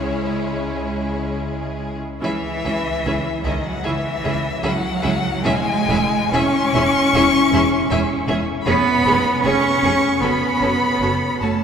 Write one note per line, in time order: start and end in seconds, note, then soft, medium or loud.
0.00 2.00 C#2 medium
0.00 2.00 C#3 medium
0.00 1.96 G#3 medium
0.00 1.99 C#4 medium
0.00 2.00 E4 medium
0.00 1.96 G#4 medium
0.00 1.29 C#5 medium
2.21 2.30 C#2 medium
2.21 3.41 E3 loud
2.21 2.30 C#4 medium
2.21 2.29 E4 medium
2.21 2.32 G#4 medium
2.21 3.41 E5 medium
2.21 2.32 E5 medium
2.64 2.72 C#2 medium
2.64 2.73 C#4 medium
2.64 2.72 E4 medium
2.64 2.72 G#4 medium
2.64 2.73 E5 medium
3.05 3.13 C#2 medium
3.05 3.14 C#4 medium
3.05 3.14 E4 medium
3.05 3.13 G#4 medium
3.05 3.14 E5 medium
3.44 3.54 C#2 medium
3.44 3.65 D#3 medium
3.44 3.54 C#4 medium
3.44 3.54 E4 medium
3.44 3.52 G#4 medium
3.44 3.66 D#5 medium
3.44 3.52 E5 medium
3.66 3.86 F#3 medium
3.66 3.85 F#5 medium
3.83 3.93 C#2 medium
3.83 4.62 E3 loud
3.83 3.93 C#4 medium
3.83 3.94 E4 medium
3.83 3.92 G#4 medium
3.83 3.91 E5 medium
3.83 4.64 E5 medium
4.24 4.33 C#2 medium
4.24 4.33 C#4 medium
4.24 4.32 E4 medium
4.24 4.32 G#4 medium
4.24 4.32 E5 medium
4.63 4.72 C#2 medium
4.63 5.43 F#3 loud
4.63 4.71 C#4 medium
4.63 4.72 E4 medium
4.63 4.71 G#4 medium
4.63 4.71 E5 medium
4.63 5.44 F#5 medium
5.03 5.12 C#2 medium
5.03 5.12 C#4 medium
5.03 5.11 E4 medium
5.03 5.11 G#4 medium
5.03 5.11 E5 medium
5.44 5.53 E1 loud
5.44 6.33 G#3 loud
5.44 5.53 C#4 medium
5.44 5.53 E4 medium
5.44 5.52 G#4 medium
5.44 5.52 E5 medium
5.44 6.34 G#5 loud
5.88 5.97 E1 medium
5.88 5.96 C#4 medium
5.88 5.96 E4 medium
5.88 5.98 G#4 medium
5.88 5.97 E5 medium
6.33 6.41 E1 medium
6.33 6.41 C#4 medium
6.33 8.28 C#4 loud
6.33 6.41 E4 medium
6.33 6.41 G#4 medium
6.33 6.41 E5 medium
6.33 8.29 C#6 loud
6.74 6.82 E1 medium
6.74 6.82 C#4 medium
6.74 6.82 E4 medium
6.74 6.82 G#4 medium
6.74 6.82 E5 medium
7.14 7.22 E1 medium
7.14 7.23 C#4 medium
7.14 7.22 E4 medium
7.14 7.23 G#4 medium
7.14 7.23 E5 medium
7.52 7.60 E1 medium
7.52 7.61 C#4 medium
7.52 7.61 E4 medium
7.52 7.61 G#4 medium
7.52 7.61 E5 medium
7.90 7.98 E1 loud
7.90 7.99 C#4 medium
7.90 7.99 E4 medium
7.90 7.99 G#4 medium
7.90 7.99 E5 medium
8.28 8.36 E1 medium
8.28 8.37 C#4 medium
8.28 8.37 E4 medium
8.28 8.36 G#4 medium
8.28 8.36 E5 medium
8.65 8.75 F1 medium
8.65 9.41 B3 loud
8.65 8.75 C#4 medium
8.65 8.74 G#4 medium
8.65 8.75 G#4 medium
8.65 8.74 C#5 medium
8.65 9.40 B5 loud
9.06 9.14 F1 medium
9.06 9.15 C#4 medium
9.06 9.14 G#4 medium
9.06 9.15 C#5 medium
9.44 9.53 F1 medium
9.44 10.22 C#4 loud
9.44 9.54 C#4 medium
9.44 9.52 G#4 medium
9.44 9.54 G#4 medium
9.44 9.53 C#5 medium
9.44 10.22 C#6 loud
9.84 9.92 F1 medium
9.84 9.93 C#4 medium
9.84 9.92 G#4 medium
9.84 9.93 G#4 medium
9.84 9.92 C#5 medium
10.22 10.30 F#1 medium
10.22 11.41 B3 loud
10.22 10.31 C#4 medium
10.22 10.31 F#4 medium
10.22 10.30 A4 medium
10.22 10.30 C#5 medium
10.22 11.41 B5 loud
10.61 10.69 F#1 medium
10.61 10.69 C#4 medium
10.61 10.69 F#4 medium
10.61 10.70 A4 medium
10.61 10.69 C#5 medium
11.00 11.09 F#1 medium
11.00 11.08 C#4 medium
11.00 11.08 F#4 medium
11.00 11.10 A4 medium
11.00 11.10 C#5 medium
11.41 11.49 F#1 medium
11.41 11.64 A3 medium
11.41 11.50 C#4 medium
11.41 11.50 F#4 medium
11.41 11.51 A4 medium
11.41 11.50 C#5 medium
11.41 11.64 A5 medium